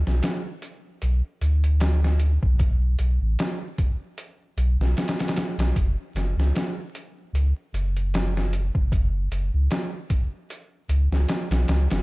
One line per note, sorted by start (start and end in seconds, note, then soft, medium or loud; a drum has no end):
0.07 0.21 B1 medium
0.07 snare soft
0.23 snare loud
0.23 closed hi-hat medium
0.62 closed hi-hat medium
1.02 1.22 B1 medium
1.02 closed hi-hat medium
1.41 2.38 D2 medium
1.41 closed hi-hat medium
1.64 closed hi-hat soft
1.80 snare loud
1.80 closed hi-hat medium
2.04 snare medium
2.20 closed hi-hat medium
2.43 2.96 B1 medium
2.43 kick medium
2.59 kick loud
2.59 closed hi-hat medium
2.99 3.19 B1 medium
2.99 closed hi-hat medium
3.21 3.36 A1 loud
3.39 snare loud
3.39 closed hi-hat medium
3.78 kick loud
3.78 closed hi-hat medium
4.18 closed hi-hat medium
4.57 4.77 B1 loud
4.57 closed hi-hat medium
4.79 4.94 B1 loud
4.79 snare soft
4.97 snare medium
4.97 closed hi-hat medium
5.08 snare medium
5.08 closed hi-hat medium
5.19 snare medium
5.19 closed hi-hat medium
5.28 snare medium
5.28 closed hi-hat medium
5.36 snare loud
5.36 closed hi-hat medium
5.58 5.73 B1 medium
5.58 snare loud
5.58 closed hi-hat medium
5.76 5.96 F#1 loud
5.76 kick loud
5.76 closed hi-hat medium
6.14 6.34 F#1 medium
6.14 snare soft
6.14 closed hi-hat medium
6.37 6.52 C#2 loud
6.37 snare medium
6.55 snare loud
6.55 closed hi-hat medium
6.95 closed hi-hat medium
7.33 7.53 C#2 medium
7.33 closed hi-hat medium
7.73 8.70 F#1 medium
7.73 closed hi-hat medium
7.97 closed hi-hat soft
8.14 snare loud
8.14 closed hi-hat medium
8.37 snare medium
8.53 closed hi-hat medium
8.75 9.28 F#1 medium
8.75 kick loud
8.92 kick loud
8.92 closed hi-hat medium
9.31 9.51 F#1 medium
9.31 closed hi-hat medium
9.54 9.68 C#2 medium
9.71 snare loud
9.71 closed hi-hat medium
10.10 kick medium
10.10 closed hi-hat medium
10.50 closed hi-hat medium
10.89 11.08 C#2 medium
10.89 closed hi-hat medium
11.11 11.26 C#2 medium
11.11 snare soft
11.29 snare loud
11.29 closed hi-hat medium
11.50 11.65 B1 loud
11.50 snare loud
11.50 closed hi-hat medium
11.68 11.88 C#2 loud
11.68 snare loud
11.68 closed hi-hat medium
11.90 12.03 F#1 medium
11.90 snare loud
11.90 closed hi-hat medium